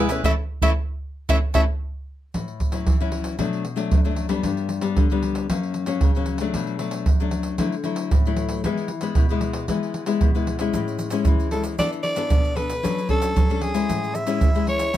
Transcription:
Already playing: nylon-string guitar B2, cavaquinho E4
0.00 cavaquinho G#4
0.09 nylon-string guitar A3 C#4 E4, cavaquinho G#4 B4 E5, pandeiro, shaker
0.24 nylon-string guitar E3 A3 C#4, cavaquinho E4 A4 C#5, soprano saxophone E5, surdo
0.62 nylon-string guitar E3 A3 C#4, cavaquinho E4 A4 C#5, soprano saxophone E5, surdo
1.29 nylon-string guitar E3 A3 C#4, cavaquinho E4 A4 C#5, soprano saxophone E5, surdo
1.54 nylon-string guitar E3 A3 C#4, cavaquinho E4 A4 C#5, soprano saxophone E5, surdo
2.34 nylon-string guitar A2, pandeiro, surdo
2.48 pandeiro
2.60 pandeiro, surdo
2.72 nylon-string guitar F#3 C#4 E4, pandeiro
2.87 nylon-string guitar E3, pandeiro, surdo
3.00 nylon-string guitar F#3 C#4 E4, pandeiro
3.12 pandeiro
3.24 pandeiro
3.39 nylon-string guitar B2 F#3 A3 D4, pandeiro, surdo
3.53 pandeiro
3.65 pandeiro
3.76 nylon-string guitar F#3 A3 D4, pandeiro
3.92 nylon-string guitar F#2, pandeiro, surdo
4.05 nylon-string guitar F#3 A3 D4, pandeiro
4.16 pandeiro
4.29 nylon-string guitar G3 B3 D4, pandeiro
4.43 nylon-string guitar G2, pandeiro, surdo
4.57 pandeiro
4.69 pandeiro
4.81 nylon-string guitar G3 B3 D4, pandeiro
4.96 nylon-string guitar D3, pandeiro, surdo
5.10 nylon-string guitar G3 B3 D4, pandeiro
5.23 pandeiro
5.35 pandeiro
5.50 nylon-string guitar F#2 F#3 A#3 C#4, pandeiro, surdo
5.63 pandeiro
5.74 pandeiro
5.86 nylon-string guitar F#3 A#3 C#4, pandeiro
6.01 nylon-string guitar C#3, pandeiro, surdo
6.15 nylon-string guitar F#3 A#3 C#4, pandeiro
6.26 pandeiro
6.38 nylon-string guitar F#3 A3 D4, pandeiro
6.54 nylon-string guitar B2, pandeiro, surdo
6.67 pandeiro
6.79 nylon-string guitar F#3 A3 D4, pandeiro
6.91 pandeiro
7.06 nylon-string guitar F#2, pandeiro, surdo
7.20 nylon-string guitar F#3 A3 D4, pandeiro
7.31 pandeiro
7.43 pandeiro
7.58 nylon-string guitar D3 F#3 A3 E4, pandeiro, surdo
7.72 pandeiro
7.84 nylon-string guitar F#3 A3 E4, pandeiro
7.96 pandeiro
8.11 nylon-string guitar A2, pandeiro, surdo
8.25 nylon-string guitar F#3 A3 E4, pandeiro
8.37 pandeiro
8.49 pandeiro
8.64 nylon-string guitar E3 G#3 B3 E4, pandeiro, surdo
8.77 pandeiro
8.88 pandeiro
9.01 nylon-string guitar G#3 B3 E4, pandeiro
9.15 nylon-string guitar B2, pandeiro, surdo
9.29 nylon-string guitar G#3 B3 E4, pandeiro
9.41 pandeiro
9.53 pandeiro
9.68 nylon-string guitar E3 G#3 B3 E4, pandeiro, surdo
9.83 pandeiro
9.94 pandeiro
10.06 nylon-string guitar G#3 B3 E4, pandeiro
10.21 nylon-string guitar B2, pandeiro, surdo
10.35 nylon-string guitar G#3 B3 E4, pandeiro
10.47 pandeiro
10.59 nylon-string guitar G#3 C#4 E4, pandeiro
10.74 nylon-string guitar A2, pandeiro, shaker, surdo
10.88 pandeiro, shaker
10.99 pandeiro, shaker
11.10 nylon-string guitar G#3 C#4 E4, pandeiro, shaker
11.25 nylon-string guitar E3, pandeiro, shaker, surdo
11.40 pandeiro, shaker
11.51 nylon-string guitar G#3 C#4 E4, soprano saxophone A4, pandeiro
11.64 pandeiro, shaker
11.79 nylon-string guitar E3 B3 D4 A4, soprano saxophone D5, pandeiro, shaker, surdo
11.92 pandeiro, shaker
12.03 soprano saxophone D5, pandeiro
12.16 nylon-string guitar B3 D4 A4, pandeiro, shaker
12.30 nylon-string guitar B2, pandeiro, shaker, surdo
12.45 pandeiro, shaker
12.56 nylon-string guitar B3 D4 A4, soprano saxophone B4, pandeiro
12.70 pandeiro, shaker
12.83 nylon-string guitar F#3 C#4 D4 A4, pandeiro, shaker, surdo
12.98 pandeiro, shaker
13.09 nylon-string guitar C#4 D4 A4, soprano saxophone A4, pandeiro, surdo
13.22 pandeiro, shaker
13.36 nylon-string guitar F#3, pandeiro, shaker, surdo
13.50 nylon-string guitar C#4 D4 A4, pandeiro, shaker
13.61 soprano saxophone G#4, pandeiro
13.74 nylon-string guitar G#3 C#4 E4, pandeiro, shaker
13.89 nylon-string guitar A2, pandeiro, shaker, surdo
14.04 pandeiro, shaker
14.15 soprano saxophone E5, pandeiro, shaker
14.26 nylon-string guitar G#3 C#4 E4, pandeiro, shaker
14.41 nylon-string guitar E3, pandeiro, shaker, surdo
14.55 nylon-string guitar G#3 C#4 E4, pandeiro, shaker
14.67 soprano saxophone C#5, pandeiro
14.79 pandeiro, shaker
14.93 nylon-string guitar A2 F#3 C#4 E4, pandeiro, shaker, surdo

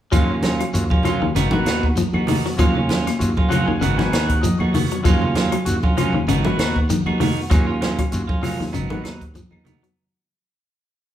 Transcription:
0.11 fingered electric bass D#2, clean electric guitar F3 F#3 A#3 C#4 F4, transistor combo organ F#3 C#4 F4, kick, closed hi-hat, claves, shekere
0.29 clean electric guitar A#3 C#4
0.43 clean electric guitar F#3 A#3 C#4 F4, snare, closed hi-hat, high conga, shekere
0.59 clean electric guitar F#3, closed hi-hat, claves
0.73 fingered electric bass D#2, transistor combo organ F#3 C#4 F4, closed hi-hat, high conga, shekere
0.90 clean electric guitar A#3 C#4 F4, kick, high conga
1.03 clean electric guitar F3 F#3 A#3 C#4 F4, transistor combo organ F#3 C#4 F4, muted fingered electric bass stroke, closed hi-hat, high conga, low conga, claves, shekere
1.22 fingered electric bass D#2, clean electric guitar D#3
1.35 fingered electric bass G#1, clean electric guitar C#3 D#3 B3 D#4 F#4, snare, closed hi-hat, high conga, shekere
1.51 clean electric guitar D#3 B3 D#4 F#4, transistor combo organ A#3 B3 F#4, high conga
1.65 fingered electric bass D#2, clean electric guitar D#3 B3 D#4 F#4, snare, closed hi-hat, claves, shekere
1.83 kick
1.96 clean electric guitar F3, closed hi-hat, high conga, shekere
2.13 fingered electric bass D#2, clean electric guitar B3 D#4 F#4, high conga, claves
2.27 clean electric guitar D#3 B3 D#4 F#4, open hi-hat, low conga, shekere
2.45 clean electric guitar F#3, snare
2.57 fingered electric bass D#2, clean electric guitar F3 F#3 A#3 C#4 F4, transistor combo organ F#3 C#4 F4, kick, closed hi-hat, high conga, claves, shekere
2.75 clean electric guitar A#3 C#4 F4, low conga
2.89 clean electric guitar F#3 A#3 C#4 F4, snare, closed hi-hat, high conga, shekere
3.07 clean electric guitar A#3, snare, closed hi-hat, claves
3.19 fingered electric bass D#2, transistor combo organ F#3 C#4 F4, closed hi-hat, high conga, shekere
3.37 clean electric guitar A#3 C#4 F4, kick, high conga
3.49 clean electric guitar F3 F#3 A#3 C#4 F4, transistor combo organ F#3 C#4 F4 F#5, muted fingered electric bass stroke, closed hi-hat, low conga, claves, shekere
3.66 fingered electric bass D#2, clean electric guitar D#3, transistor combo organ G#5
3.79 fingered electric bass G#1, clean electric guitar C#3 D#3 B3 D#4 F#4, transistor combo organ F#5, closed hi-hat, high conga, shekere
3.97 clean electric guitar D#3 B3 D#4 F#4, transistor combo organ A#3 B3 F#4 G#5, snare, high conga
4.12 fingered electric bass D#2, clean electric guitar D#3 B3 D#4 F#4, snare, closed hi-hat, claves, shekere
4.28 transistor combo organ F#5, kick, closed hi-hat
4.41 clean electric guitar F3, transistor combo organ D#5, closed hi-hat, high conga, shekere
4.59 fingered electric bass D#2, clean electric guitar B3 D#4 F#4, transistor combo organ C#5, high conga, claves
4.74 clean electric guitar D#3 B3 F#4, open hi-hat, low conga, shekere
4.91 clean electric guitar F#3, closed hi-hat
5.03 fingered electric bass D#2, clean electric guitar F3 F#3 A#3 C#4 F4, transistor combo organ F#3 C#4 F4, kick, closed hi-hat, high conga, claves, shekere
5.21 clean electric guitar A#3 C#4 F4, low conga
5.35 clean electric guitar F#3 A#3 C#4 F4, snare, closed hi-hat, high conga, shekere
5.52 clean electric guitar F#3, closed hi-hat, claves
5.65 fingered electric bass D#2, transistor combo organ F#3 C#4 F#4, closed hi-hat, high conga, shekere
5.83 clean electric guitar A#3 C#4 F4, kick, high conga
5.97 clean electric guitar F3 F#3 A#3 C#4 F4, transistor combo organ F#3 C#4 F4, muted fingered electric bass stroke, closed hi-hat, low conga, claves, shekere
6.13 fingered electric bass D#2, clean electric guitar D#3
6.27 fingered electric bass G#1, clean electric guitar C#3 D#3 B3 D#4 F#4, closed hi-hat, high conga, shekere
6.45 clean electric guitar D#3 B3 D#4 F#4, transistor combo organ A#3 B3 F#4, high conga
6.58 fingered electric bass D#2, clean electric guitar B3 D#4 F#4, snare, closed hi-hat, claves, shekere
6.76 kick
6.90 clean electric guitar D#3, closed hi-hat, high conga, shekere
7.06 fingered electric bass D#2, clean electric guitar B3 D#4 F#4, high conga, claves
7.20 clean electric guitar D#3 B3 D#4 F#4, open hi-hat, low conga, shekere
7.50 fingered electric bass D#2, transistor combo organ F#3 C#4 F4, clean electric guitar F#3 A#3 C#4, muted clean electric guitar stroke, kick, closed hi-hat, claves, shekere
7.67 clean electric guitar A#3 C#4 F4
7.81 clean electric guitar F#3 A#3 C#4 F4, snare, closed hi-hat, high conga, shekere
7.98 clean electric guitar F#3, kick, closed hi-hat, claves
8.12 fingered electric bass D#2, transistor combo organ F#3 C#4 F4, closed hi-hat, high conga, shekere
8.27 clean electric guitar A#3 C#4 F4, kick, high conga
8.42 clean electric guitar F3 F#3 A#3 C#4 F4, transistor combo organ F#3 C#4 F4, muted fingered electric bass stroke, snare, open hi-hat, high conga, low conga, claves, shekere
8.60 fingered electric bass D#2, clean electric guitar D#3, snare
8.73 fingered electric bass G#1, clean electric guitar C#3 F#3 B3 D#4, closed hi-hat, high conga, shekere
8.90 clean electric guitar D#3 B3 D#4, transistor combo organ A#3 B3 F#4, high conga
9.04 fingered electric bass D#2, clean electric guitar F#3 D#4, snare, closed hi-hat, claves, shekere
9.21 kick, closed hi-hat
9.34 clean electric guitar F3, kick, closed hi-hat, high conga, shekere
9.51 fingered electric bass D#2, clean electric guitar B3 D#4, high conga, claves
9.64 clean electric guitar D#3 F#3 B3 D#4, closed hi-hat, low conga, shekere
9.83 clean electric guitar F#3, closed hi-hat

